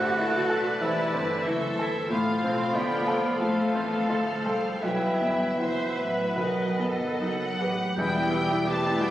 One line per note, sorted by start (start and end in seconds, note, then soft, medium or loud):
0.00 0.18 G1 medium
0.00 2.11 A2 medium
0.00 0.55 D3 medium
0.00 0.37 C4 medium
0.00 0.81 F#4 medium
0.00 0.19 G4 medium
0.00 0.23 G4 medium
0.00 0.18 C5 medium
0.00 0.18 E5 medium
0.00 0.18 A5 medium
0.00 0.83 F#6 medium
0.17 0.49 F#1 medium
0.17 0.68 E4 medium
0.17 0.80 A4 medium
0.17 1.16 B4 medium
0.17 1.43 D5 medium
0.17 1.44 A5 medium
0.22 0.56 A4 medium
0.49 0.79 E1 medium
0.49 1.00 A4 medium
0.55 0.86 B4 medium
0.80 1.12 E1 medium
0.80 1.15 C3 medium
0.80 1.13 E3 soft
0.80 1.44 E4 medium
0.80 1.43 B4 medium
0.80 1.04 C5 medium
0.80 1.04 E5 medium
0.80 1.45 E6 medium
0.85 1.15 A4 medium
1.12 1.44 G1 medium
1.12 1.45 D3 medium
1.12 1.65 C4 soft
1.17 1.49 G4 medium
1.44 1.77 F#1 medium
1.44 2.12 E3 medium
1.44 1.98 E4 medium
1.44 1.83 F#4 medium
1.44 2.06 A4 medium
1.44 2.11 A4 medium
1.44 2.11 C5 medium
1.44 2.11 E5 medium
1.79 2.10 G1 medium
1.79 2.12 E4 medium
1.79 2.11 A4 soft
2.10 2.43 A1 medium
2.10 2.42 A2 medium
2.10 4.09 F3 medium
2.10 3.37 F4 medium
2.10 2.53 F4 medium
2.10 3.35 A4 medium
2.10 2.74 A4 medium
2.10 2.74 C5 medium
2.10 2.74 F5 soft
2.10 3.36 F5 medium
2.43 2.74 B1 soft
2.43 2.73 C4 medium
2.43 2.95 C4 soft
2.43 2.77 C6 medium
2.74 3.07 D2 soft
2.74 3.40 B3 medium
2.74 3.27 F4 soft
2.74 3.08 G4 medium
2.74 3.10 D5 medium
2.74 3.41 D5 soft
2.74 3.39 G5 soft
2.74 3.42 B5 medium
3.07 3.39 C2 soft
3.07 4.08 F4 soft
3.07 3.60 A4 soft
3.07 3.39 C5 soft
3.38 3.72 F2 soft
3.38 3.73 A2 soft
3.38 4.44 A3 medium
3.38 4.82 A4 soft
3.38 4.80 A4 soft
3.38 3.73 C5 soft
3.38 4.09 C5 soft
3.38 4.07 F5 soft
3.38 4.80 F5 soft
3.38 4.45 A5 medium
3.73 4.08 E2 soft
3.73 4.31 C4 soft
3.73 4.12 B4 soft
4.09 4.45 D2 soft
4.09 4.83 F3 soft
4.09 4.68 F4 soft
4.09 4.47 A4 soft
4.09 4.46 A4 soft
4.09 4.83 C5 soft
4.09 4.82 F5 soft
4.45 4.82 C2 soft
4.45 4.81 G3 medium
4.45 4.83 A4 soft
4.45 4.86 A4 soft
4.45 4.84 C5 soft
4.45 4.81 G5 soft
4.81 5.19 B1 soft
4.81 5.20 B1 soft
4.81 6.37 E3 soft
4.81 5.58 G3 medium
4.81 5.51 E4 soft
4.81 5.56 B4 soft
4.81 7.61 B4 medium
4.81 6.37 B4 soft
4.81 5.56 E5 soft
4.81 6.35 E5 soft
4.81 6.39 E5 soft
4.81 5.60 G5 medium
5.19 5.58 G1 soft
5.19 5.83 B3 soft
5.57 5.97 F#1 soft
5.57 7.60 F#3 soft
5.57 6.21 E4 soft
5.57 6.35 B4 soft
5.57 5.96 C5 medium
5.57 6.35 E5 soft
5.57 7.61 F#5 soft
5.96 6.37 A1 soft
5.96 6.37 B4 soft
5.96 6.79 B4 soft
6.36 6.77 B1 soft
6.36 6.79 B1 soft
6.36 7.57 B2 medium
6.36 7.60 D#3 soft
6.36 7.20 B4 soft
6.36 7.60 B4 soft
6.36 7.21 D#5 soft
6.36 7.22 D#5 soft
6.40 7.78 D#5 soft
6.79 7.21 G1 soft
6.79 7.45 B3 soft
6.79 7.61 A4 soft
7.20 7.61 F#1 soft
7.20 7.93 F#3 medium
7.20 7.83 D#4 soft
7.20 7.94 F#5 medium
7.61 7.97 A1 soft
7.61 7.98 G4 soft
7.61 7.98 B4 soft
7.95 9.10 E1 medium
7.95 8.97 E2 medium
7.95 9.10 E2 medium
7.95 8.65 G3 medium
7.95 8.63 G3 soft
7.95 9.10 G3 medium
7.95 8.63 B3 soft
7.95 9.10 E4 medium
7.95 8.31 E4 medium
7.95 9.10 B4 medium
7.95 8.64 B4 soft
7.95 8.33 G6 medium
8.00 8.68 G5 medium
8.15 8.43 E4 soft
8.31 8.60 G3 soft
8.31 8.67 G4 medium
8.31 8.65 E6 medium
8.51 8.78 E4 soft
8.65 9.10 E3 soft
8.65 9.00 A3 medium
8.65 9.10 C4 soft
8.65 8.94 G4 soft
8.65 9.10 G4 soft
8.65 9.10 E5 soft
8.65 9.01 A5 medium
8.65 9.10 D6 medium
8.85 9.10 E4 soft
8.99 9.10 G3 medium
8.99 9.10 F#4 soft
8.99 9.10 G5 medium